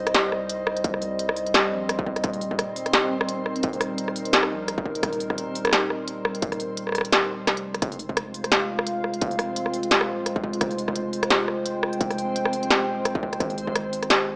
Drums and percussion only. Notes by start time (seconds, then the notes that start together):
0.07 cross-stick, closed hi-hat
0.14 snare, closed hi-hat
0.32 cross-stick
0.49 closed hi-hat
0.67 cross-stick
0.77 closed hi-hat
0.84 kick, closed hi-hat
0.94 cross-stick
1.02 open hi-hat
1.19 closed hi-hat
1.29 cross-stick
1.36 open hi-hat
1.47 closed hi-hat
1.54 cross-stick, snare
1.89 cross-stick, closed hi-hat
1.99 kick
2.07 kick
2.16 cross-stick, closed hi-hat
2.24 kick, cross-stick, closed hi-hat
2.33 open hi-hat
2.41 open hi-hat
2.51 kick
2.59 cross-stick, closed hi-hat
2.76 open hi-hat
2.86 cross-stick, closed hi-hat
2.93 snare, closed hi-hat
3.21 cross-stick
3.29 closed hi-hat
3.46 cross-stick
3.56 closed hi-hat
3.63 kick, closed hi-hat
3.73 open hi-hat
3.81 cross-stick, open hi-hat
3.98 closed hi-hat
4.08 cross-stick
4.16 open hi-hat
4.25 closed hi-hat
4.33 snare, closed hi-hat
4.43 cross-stick
4.68 cross-stick, closed hi-hat
4.78 kick
4.86 kick
4.95 closed hi-hat
5.03 kick, cross-stick, closed hi-hat
5.13 open hi-hat
5.20 open hi-hat
5.30 kick, cross-stick
5.38 closed hi-hat
5.55 open hi-hat
5.65 cross-stick, closed hi-hat
5.67 cross-stick
5.69 cross-stick
5.71 cross-stick, snare, closed hi-hat
5.74 cross-stick
5.77 cross-stick
5.80 cross-stick
5.90 cross-stick
6.08 closed hi-hat
6.25 cross-stick
6.35 closed hi-hat
6.42 kick, closed hi-hat
6.52 cross-stick, open hi-hat
6.60 open hi-hat
6.77 closed hi-hat
6.87 cross-stick
6.89 cross-stick
6.92 cross-stick
6.95 cross-stick, open hi-hat
6.98 cross-stick
7.01 cross-stick, closed hi-hat
7.12 cross-stick, snare, closed hi-hat
7.47 cross-stick, snare, closed hi-hat
7.57 closed hi-hat
7.74 cross-stick, closed hi-hat
7.82 kick, cross-stick, closed hi-hat
7.92 open hi-hat
7.99 open hi-hat
8.09 kick
8.17 cross-stick, closed hi-hat
8.34 open hi-hat
8.44 cross-stick, closed hi-hat
8.52 snare, closed hi-hat
8.79 cross-stick
8.87 closed hi-hat
9.04 cross-stick
9.14 closed hi-hat
9.21 kick, closed hi-hat
9.31 open hi-hat
9.39 cross-stick, open hi-hat
9.56 closed hi-hat
9.66 cross-stick
9.74 open hi-hat
9.83 closed hi-hat
9.91 snare, closed hi-hat
10.01 cross-stick
10.26 cross-stick, closed hi-hat
10.36 kick
10.44 kick
10.53 closed hi-hat
10.61 kick, cross-stick, closed hi-hat
10.71 open hi-hat
10.78 open hi-hat
10.88 kick, cross-stick
10.96 closed hi-hat
11.13 open hi-hat
11.23 cross-stick, closed hi-hat
11.30 snare, closed hi-hat
11.48 cross-stick
11.66 closed hi-hat
11.83 cross-stick
11.93 closed hi-hat
12.01 kick, closed hi-hat
12.11 cross-stick, open hi-hat
12.18 open hi-hat
12.36 closed hi-hat
12.45 cross-stick
12.53 open hi-hat
12.63 closed hi-hat
12.71 cross-stick, snare, closed hi-hat
13.05 cross-stick, closed hi-hat
13.15 kick
13.23 kick
13.33 cross-stick, closed hi-hat
13.40 kick, cross-stick, closed hi-hat
13.50 open hi-hat
13.58 open hi-hat
13.67 kick
13.76 cross-stick, closed hi-hat
13.93 open hi-hat
14.03 cross-stick, closed hi-hat
14.10 snare, closed hi-hat